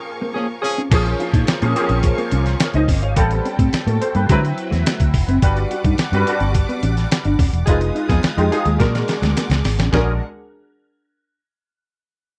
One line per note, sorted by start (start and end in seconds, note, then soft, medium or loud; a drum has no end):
0.00 0.91 F3 medium
0.00 0.91 A#3 medium
0.00 0.93 C4 medium
0.00 0.92 C#4 medium
0.00 0.92 G#4 medium
0.00 0.36 A#4 loud
0.00 0.87 A#4 medium
0.00 0.87 F5 medium
0.00 0.88 G#5 medium
0.00 0.87 C#6 medium
0.21 0.32 A#3 medium
0.34 0.46 F3 medium
0.34 0.46 A#3 medium
0.34 0.47 C#4 medium
0.34 0.46 G#4 medium
0.62 0.81 F3 medium
0.62 0.81 C#4 medium
0.62 0.81 G#4 loud
0.62 muted clean electric guitar stroke soft
0.78 0.88 C#4 medium
0.91 1.13 A#1 loud
0.91 1.36 F3 medium
0.91 1.36 A#3 medium
0.91 1.36 C#4 medium
0.91 1.36 G#4 loud
0.91 3.14 A#4 medium
0.91 3.14 F5 medium
0.91 3.14 G#5 medium
0.91 3.14 C#6 medium
0.91 kick loud
0.91 closed hi-hat medium
0.91 crash loud
1.06 muted clean electric guitar stroke soft
1.06 closed hi-hat medium
1.20 1.30 F4 medium
1.20 closed hi-hat medium
1.33 1.44 A#2 medium
1.33 1.44 D#4 medium
1.33 kick medium
1.33 closed hi-hat soft
1.47 muted fingered electric bass stroke medium
1.47 snare loud
1.47 closed hi-hat medium
1.61 1.73 A#2 loud
1.61 1.70 F3 medium
1.61 1.71 A#3 medium
1.61 1.70 C#4 medium
1.61 1.72 C#4 medium
1.61 1.71 G#4 medium
1.61 closed hi-hat medium
1.75 2.47 F3 medium
1.75 2.47 A#3 medium
1.75 1.82 C4 medium
1.75 2.47 G#4 medium
1.75 muted clean electric guitar stroke soft
1.75 closed hi-hat medium
1.83 2.50 C#4 medium
1.89 2.11 A#1 loud
1.89 2.01 C#4 medium
1.89 closed hi-hat soft
2.03 muted clean electric guitar stroke soft
2.03 kick medium
2.03 closed hi-hat medium
2.18 2.28 A#3 medium
2.18 closed hi-hat medium
2.31 2.54 C2 loud
2.31 2.42 C#4 medium
2.31 closed hi-hat medium
2.46 snare soft
2.46 closed hi-hat soft
2.60 2.74 A#4 medium
2.60 2.74 C#5 medium
2.60 muted clean electric guitar stroke soft
2.60 snare loud
2.60 closed hi-hat loud
2.74 2.85 C#2 medium
2.74 2.85 D#4 medium
2.74 3.02 C5 medium
2.74 3.01 D#5 medium
2.74 closed hi-hat medium
2.88 3.03 G1 medium
2.88 2.99 C#4 medium
2.88 kick loud
2.88 open hi-hat medium
3.02 3.13 G#1 loud
3.02 3.29 C#5 soft
3.02 3.29 F5 medium
3.02 closed hi-hat medium
3.16 3.38 A1 loud
3.16 3.61 G3 medium
3.16 3.61 B3 medium
3.16 3.61 C4 medium
3.16 3.61 A4 loud
3.16 4.28 G5 medium
3.16 4.28 A5 medium
3.16 kick loud
3.16 closed hi-hat loud
3.31 muted clean electric guitar stroke soft
3.31 closed hi-hat medium
3.45 3.55 C#4 medium
3.45 closed hi-hat medium
3.59 3.70 A2 medium
3.59 3.69 C4 medium
3.59 kick medium
3.59 closed hi-hat soft
3.73 muted fingered electric bass stroke medium
3.73 snare loud
3.73 closed hi-hat medium
3.87 3.98 A2 loud
3.87 3.97 A#3 medium
3.87 4.01 F#4 medium
3.87 4.00 A4 medium
3.87 closed hi-hat medium
4.01 4.15 A4 medium
4.01 4.14 C5 medium
4.01 muted clean electric guitar stroke soft
4.01 closed hi-hat medium
4.15 4.26 G2 medium
4.15 4.26 A#3 medium
4.15 4.42 G4 medium
4.15 4.29 B4 medium
4.15 closed hi-hat medium
4.29 4.51 D3 loud
4.29 5.19 F#3 loud
4.29 4.39 G#3 medium
4.29 5.19 C4 medium
4.29 5.19 E4 medium
4.29 5.20 B4 loud
4.29 5.41 E5 medium
4.29 7.64 F#5 medium
4.29 kick medium
4.29 closed hi-hat medium
4.45 closed hi-hat soft
4.58 closed hi-hat medium
4.71 4.83 E2 medium
4.71 4.82 A3 medium
4.71 snare soft
4.71 closed hi-hat soft
4.86 4.96 A3 medium
4.86 snare loud
4.86 closed hi-hat loud
5.00 5.11 D2 medium
5.00 kick loud
5.00 closed hi-hat medium
5.14 5.25 F1 loud
5.14 muted clean electric guitar stroke soft
5.14 kick medium
5.14 open hi-hat medium
5.28 5.39 F#1 medium
5.28 5.39 C4 medium
5.28 closed hi-hat medium
5.42 5.64 G1 loud
5.42 5.87 G3 medium
5.42 5.87 D4 medium
5.42 5.87 F#4 medium
5.42 5.87 B4 loud
5.42 7.65 D5 medium
5.42 7.66 D6 medium
5.42 kick loud
5.42 closed hi-hat medium
5.57 muted clean electric guitar stroke soft
5.57 closed hi-hat medium
5.71 5.81 F#4 medium
5.71 closed hi-hat medium
5.84 5.95 G2 medium
5.84 5.95 D#4 medium
5.84 kick loud
5.84 closed hi-hat soft
5.98 muted fingered electric bass stroke soft
5.98 snare loud
5.98 closed hi-hat medium
6.12 6.23 G2 medium
6.12 6.21 G3 medium
6.12 6.23 C#4 medium
6.12 6.22 D4 medium
6.12 6.22 F#4 medium
6.12 6.22 B4 loud
6.12 closed hi-hat medium
6.27 6.98 G3 medium
6.27 6.98 D4 medium
6.27 6.98 F#4 medium
6.27 6.99 B4 medium
6.27 muted clean electric guitar stroke soft
6.27 closed hi-hat medium
6.40 6.62 G1 loud
6.40 6.51 C#4 medium
6.40 closed hi-hat soft
6.54 muted clean electric guitar stroke soft
6.54 kick medium
6.54 closed hi-hat medium
6.69 6.79 B3 medium
6.69 closed hi-hat soft
6.83 7.05 A1 medium
6.83 6.93 C#4 medium
6.83 closed hi-hat medium
6.97 snare soft
6.97 closed hi-hat soft
7.11 muted clean electric guitar stroke soft
7.11 snare loud
7.11 closed hi-hat medium
7.25 7.36 G1 medium
7.25 7.35 D4 medium
7.25 closed hi-hat medium
7.39 7.50 D#1 loud
7.39 7.49 C#4 medium
7.39 kick loud
7.39 open hi-hat medium
7.53 7.64 E1 loud
7.53 closed hi-hat medium
7.66 7.89 F1 medium
7.66 7.79 F3 medium
7.66 8.12 G#3 medium
7.66 7.79 D#4 medium
7.66 8.12 D#4 medium
7.66 8.12 F4 medium
7.66 7.79 G#4 medium
7.66 8.12 B4 medium
7.66 8.79 F5 medium
7.66 8.79 G#5 medium
7.66 8.79 D#6 medium
7.66 kick loud
7.66 closed hi-hat medium
7.81 muted clean electric guitar stroke soft
7.81 closed hi-hat medium
7.95 8.06 D#4 medium
7.95 closed hi-hat medium
8.09 8.20 F2 medium
8.09 8.21 F3 medium
8.09 8.20 B3 medium
8.09 8.22 D#4 medium
8.09 8.21 G#4 medium
8.09 kick loud
8.09 snare soft
8.09 closed hi-hat soft
8.23 muted fingered electric bass stroke soft
8.23 snare loud
8.23 closed hi-hat medium
8.37 8.48 F2 loud
8.37 8.46 G#3 medium
8.37 8.48 G#3 medium
8.37 8.46 D#4 medium
8.37 8.47 F4 medium
8.37 8.47 G4 medium
8.37 closed hi-hat medium
8.51 8.70 F3 medium
8.51 8.77 G#3 medium
8.51 8.80 D#4 medium
8.51 8.70 D#4 medium
8.51 8.80 F4 medium
8.51 8.80 G#4 loud
8.51 8.70 G#4 medium
8.51 closed hi-hat medium
8.65 8.77 D#2 medium
8.65 8.76 G#3 medium
8.65 closed hi-hat medium
8.78 9.02 A#2 loud
8.78 8.90 F#3 medium
8.78 9.70 G#3 medium
8.78 9.70 D4 medium
8.78 9.70 F#4 medium
8.78 9.70 A#4 loud
8.78 9.91 A#4 medium
8.78 9.92 F#5 medium
8.78 9.92 G#5 medium
8.78 9.92 D6 medium
8.78 kick medium
8.78 snare medium
8.78 closed hi-hat medium
8.95 snare medium
8.95 closed hi-hat medium
9.08 snare medium
9.08 closed hi-hat medium
9.22 9.33 D2 medium
9.22 9.33 G#3 medium
9.22 snare medium
9.22 closed hi-hat soft
9.36 9.47 A#3 medium
9.36 snare medium
9.36 closed hi-hat loud
9.50 9.61 C#2 medium
9.50 snare medium
9.50 closed hi-hat medium
9.64 9.75 G#1 medium
9.64 muted clean electric guitar stroke soft
9.64 snare medium
9.64 open hi-hat medium
9.78 9.89 A1 medium
9.78 9.89 C#4 medium
9.78 snare medium
9.78 closed hi-hat medium
9.92 10.19 A#1 medium
9.92 10.12 D3 medium
9.92 10.19 G#3 medium
9.92 10.12 C#4 medium
9.92 10.19 D4 medium
9.92 10.10 D4 medium
9.92 10.19 F#4 medium
9.92 10.19 G#4 medium
9.92 10.13 G#4 medium
9.92 10.19 A#4 medium
9.92 10.19 F#5 medium
9.92 snare loud
9.92 floor tom loud